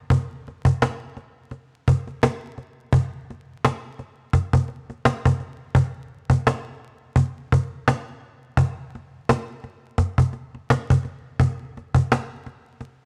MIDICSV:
0, 0, Header, 1, 2, 480
1, 0, Start_track
1, 0, Tempo, 705882
1, 69, Time_signature, 4, 2, 24, 8
1, 8875, End_track
2, 0, Start_track
2, 0, Title_t, "Cajon"
2, 69, Note_on_c, 9, 36, 114
2, 137, Note_off_c, 9, 36, 0
2, 326, Note_on_c, 9, 38, 36
2, 394, Note_off_c, 9, 38, 0
2, 442, Note_on_c, 9, 36, 89
2, 510, Note_off_c, 9, 36, 0
2, 558, Note_on_c, 9, 38, 114
2, 563, Note_off_c, 9, 38, 0
2, 563, Note_on_c, 9, 38, 94
2, 631, Note_off_c, 9, 38, 0
2, 794, Note_on_c, 9, 38, 39
2, 862, Note_off_c, 9, 38, 0
2, 1028, Note_on_c, 9, 38, 54
2, 1096, Note_off_c, 9, 38, 0
2, 1276, Note_on_c, 9, 36, 97
2, 1344, Note_off_c, 9, 36, 0
2, 1410, Note_on_c, 9, 38, 28
2, 1478, Note_off_c, 9, 38, 0
2, 1516, Note_on_c, 9, 38, 119
2, 1521, Note_off_c, 9, 38, 0
2, 1521, Note_on_c, 9, 38, 98
2, 1589, Note_off_c, 9, 38, 0
2, 1753, Note_on_c, 9, 38, 39
2, 1821, Note_off_c, 9, 38, 0
2, 1989, Note_on_c, 9, 36, 115
2, 2057, Note_off_c, 9, 36, 0
2, 2246, Note_on_c, 9, 38, 36
2, 2314, Note_off_c, 9, 38, 0
2, 2479, Note_on_c, 9, 38, 118
2, 2484, Note_off_c, 9, 38, 0
2, 2484, Note_on_c, 9, 38, 98
2, 2552, Note_off_c, 9, 38, 0
2, 2714, Note_on_c, 9, 38, 38
2, 2782, Note_off_c, 9, 38, 0
2, 2947, Note_on_c, 9, 36, 89
2, 2948, Note_on_c, 9, 38, 56
2, 3015, Note_off_c, 9, 36, 0
2, 3016, Note_off_c, 9, 38, 0
2, 3083, Note_on_c, 9, 36, 94
2, 3151, Note_off_c, 9, 36, 0
2, 3184, Note_on_c, 9, 38, 41
2, 3252, Note_off_c, 9, 38, 0
2, 3330, Note_on_c, 9, 38, 28
2, 3398, Note_off_c, 9, 38, 0
2, 3435, Note_on_c, 9, 38, 121
2, 3440, Note_off_c, 9, 38, 0
2, 3440, Note_on_c, 9, 38, 99
2, 3508, Note_off_c, 9, 38, 0
2, 3573, Note_on_c, 9, 36, 103
2, 3641, Note_off_c, 9, 36, 0
2, 3672, Note_on_c, 9, 38, 39
2, 3740, Note_off_c, 9, 38, 0
2, 3909, Note_on_c, 9, 36, 114
2, 3977, Note_off_c, 9, 36, 0
2, 4282, Note_on_c, 9, 36, 88
2, 4350, Note_off_c, 9, 36, 0
2, 4398, Note_on_c, 9, 38, 114
2, 4403, Note_off_c, 9, 38, 0
2, 4403, Note_on_c, 9, 38, 97
2, 4471, Note_off_c, 9, 38, 0
2, 4867, Note_on_c, 9, 36, 86
2, 4935, Note_off_c, 9, 36, 0
2, 5116, Note_on_c, 9, 36, 95
2, 5184, Note_off_c, 9, 36, 0
2, 5356, Note_on_c, 9, 38, 122
2, 5361, Note_off_c, 9, 38, 0
2, 5361, Note_on_c, 9, 38, 97
2, 5429, Note_off_c, 9, 38, 0
2, 5829, Note_on_c, 9, 36, 120
2, 5897, Note_off_c, 9, 36, 0
2, 6086, Note_on_c, 9, 38, 36
2, 6154, Note_off_c, 9, 38, 0
2, 6319, Note_on_c, 9, 38, 119
2, 6324, Note_off_c, 9, 38, 0
2, 6324, Note_on_c, 9, 38, 93
2, 6392, Note_off_c, 9, 38, 0
2, 6555, Note_on_c, 9, 38, 39
2, 6623, Note_off_c, 9, 38, 0
2, 6787, Note_on_c, 9, 36, 86
2, 6787, Note_on_c, 9, 38, 54
2, 6855, Note_off_c, 9, 36, 0
2, 6855, Note_off_c, 9, 38, 0
2, 6923, Note_on_c, 9, 36, 91
2, 6991, Note_off_c, 9, 36, 0
2, 7024, Note_on_c, 9, 38, 40
2, 7092, Note_off_c, 9, 38, 0
2, 7171, Note_on_c, 9, 38, 28
2, 7239, Note_off_c, 9, 38, 0
2, 7277, Note_on_c, 9, 38, 122
2, 7282, Note_off_c, 9, 38, 0
2, 7282, Note_on_c, 9, 38, 99
2, 7350, Note_off_c, 9, 38, 0
2, 7413, Note_on_c, 9, 36, 99
2, 7481, Note_off_c, 9, 36, 0
2, 7512, Note_on_c, 9, 38, 40
2, 7580, Note_off_c, 9, 38, 0
2, 7749, Note_on_c, 9, 36, 117
2, 7817, Note_off_c, 9, 36, 0
2, 8006, Note_on_c, 9, 38, 36
2, 8074, Note_off_c, 9, 38, 0
2, 8123, Note_on_c, 9, 36, 90
2, 8191, Note_off_c, 9, 36, 0
2, 8240, Note_on_c, 9, 38, 119
2, 8245, Note_off_c, 9, 38, 0
2, 8245, Note_on_c, 9, 38, 95
2, 8313, Note_off_c, 9, 38, 0
2, 8475, Note_on_c, 9, 38, 39
2, 8543, Note_off_c, 9, 38, 0
2, 8708, Note_on_c, 9, 38, 52
2, 8776, Note_off_c, 9, 38, 0
2, 8875, End_track
0, 0, End_of_file